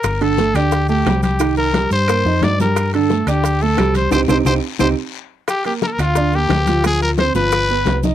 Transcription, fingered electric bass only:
\new Staff \with { instrumentName = "Fingered electric bass" } { \clef bass \time 4/4 \key g \minor \tempo 4 = 176 g,,4. d,4. c,4~ | c,4. g,4 f,8 g,4~ | g,4. d,4. c,4 | c,8 c,8 c,8 r8 c,8 r4. |
r4. d,4. d,4~ | d,4. g,,4. c,4 | }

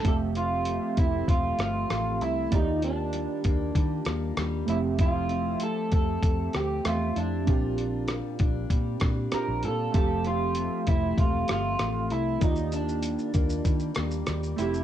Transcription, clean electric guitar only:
\new Staff \with { instrumentName = "Clean electric guitar" } { \time 4/4 \key f \major \tempo 4 = 97 a'8 f'4 e'8 f'8 f'4 e'8 | ees'8 d'2. e'8 | f'4 a'8 a'4 g'8 f'8 d'8~ | d'4 r2 bes'8 a'8 |
a'8 f'4 e'8 f'8 f'4 e'8 | ees'8 d'2. e'8 | }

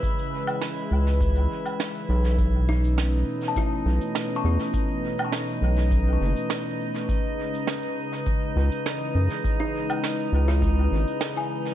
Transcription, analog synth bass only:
\new Staff \with { instrumentName = "Analog synth bass" } { \clef bass \time 4/4 \key cis \minor \tempo 4 = 102 r4. cis,4 r4 b,,8~ | b,,4. r4 b,,8 r8 e,8 | r4. b,,4 fis,,8 r4 | r2 r8 cis,8 r8 fis,8 |
r4. cis,4 gis,,8 r4 | }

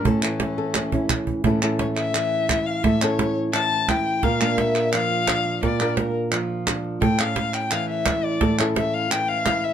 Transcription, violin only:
\new Staff \with { instrumentName = "Violin" } { \time 4/4 \tempo 4 = 172 cis'2.~ cis'8 r8 | r4 cis''8 e''2 f''8 | e''8 cis''4 r8 a''4 g''4 | f''4 e''4 f''2 |
d''4 bes'8 r2 r8 | g''8 f''4 g''8 f''8 e''4 d''8~ | d''8 cis''8 e''8 f''8 g''8 f''4 e''8 | }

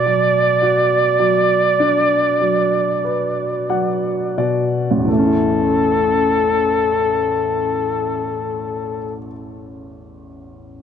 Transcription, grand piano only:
\new Staff \with { instrumentName = "Grand piano" } { \clef bass \time 4/4 \key a \major \tempo 4 = 42 <b, fis>8 fis'8 fis8 d'8 fis8 b'8 <fis fis''>8 <b, d''>8 | <a,, e, e a cis' e'>1 | }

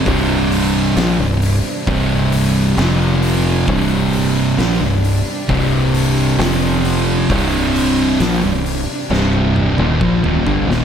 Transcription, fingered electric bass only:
\new Staff \with { instrumentName = "Fingered electric bass" } { \clef bass \time 4/4 \key c \minor \tempo 4 = 66 c,,4 bes,,16 c,,8 r16 c,,4 f,,4 | c,,4 bes,,16 c,,8 r16 c,,4 f,,4 | c,,4 bes,,16 c,,8 r16 c,,8. ees,,16 bes,,16 ees,,16 g,,16 ees,,16 | }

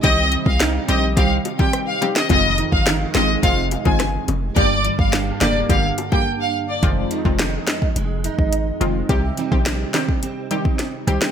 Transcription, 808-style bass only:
\new Staff \with { instrumentName = "808-style bass" } { \clef bass \time 4/4 \key f \dorian \tempo 4 = 106 c,8. c,8. bes,,8 c,8 r4. | f,,8. g,,8. aes,,8 f,,8. g,,8. f,,8 | g,,8. g,,8. f,,8 g,,8 r4. | f,,8 r16 f,,8. r8 f,,8. aes,,8. f,,8 |
c,8 r16 bes,,8. r2 c,16 r16 | }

